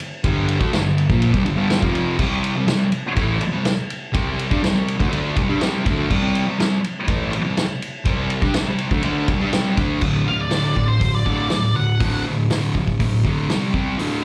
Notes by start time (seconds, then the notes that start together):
0.00 ride
0.24 G2 D3 G3, kick, ride
0.48 ride
0.60 D3 A3, kick
0.71 G2 D3, snare, ride
0.84 G2 D3
0.98 ride
1.09 A#2 F3 A#3, kick
1.22 ride
1.33 C3 G3, kick
1.45 G2 D3, ride
1.57 G2 D3 G3
1.70 snare, ride
1.82 F2 C3 F3, kick
1.95 ride
2.19 C3 G3 C4, kick, crash
2.44 ride
2.55 C3 G3
2.67 C3 G3, snare, ride
2.92 ride
3.16 A2 E3 A3, kick, ride
3.40 muted distorted electric guitar stroke, ride
3.51 C3 G3
3.65 snare, ride
3.90 ride
4.13 C3 G3 C4, kick, ride
4.39 ride
4.51 G3 D4, kick
4.62 C3 G3, snare, ride
4.74 C3 G3
4.88 ride
4.99 D3 A3, kick
5.10 D3 A3 D4, ride
5.35 C3 G3, kick, ride
5.49 G3 D4
5.60 C3 G3 C4, snare, ride
5.84 D3 A3 D4, kick, ride
6.10 C3 G3 C4, kick, crash
6.35 ride
6.46 C3 G3
6.59 C3 G3, snare, ride
6.84 ride
7.07 A2 E3 A3, kick, ride
7.32 muted distorted electric guitar stroke, ride
7.45 C3 G3
7.57 snare, ride
7.82 ride
8.05 C3 G3 C4, kick, ride
8.30 ride
8.42 G3 D4, kick
8.54 C3 G3, snare, ride
8.68 C3 G3
8.78 ride
8.91 D3 A3, kick
9.03 D3 A3 D4, ride
9.28 C3 G3, kick, ride
9.40 G3 D4
9.52 C3 G3 C4, snare, ride
9.76 D3 A3 D4, kick, ride
10.01 D2 A2 D3, kick, crash
10.26 D2 A2 F5
10.41 D5
10.49 D2 A2 D3, snare, open hi-hat
10.76 D2 A2, kick
10.88 C5
10.99 D2 A2, kick, open hi-hat
11.15 D5
11.25 D2 A2 D3, kick
11.50 D2 A2, snare, open hi-hat
11.75 D2 A2 F#5
12.00 D2 A2 D3, kick, open hi-hat
12.25 D2 A2
12.50 D2 A2 D3, snare, open hi-hat
12.74 D2 A2, kick
12.87 kick
13.00 D2 A2, kick, open hi-hat
13.24 D2 A2 D3, kick
13.49 C3 G3 C4, snare, open hi-hat
13.73 C3 G3 C4, kick
13.98 D2 A2 D3, open hi-hat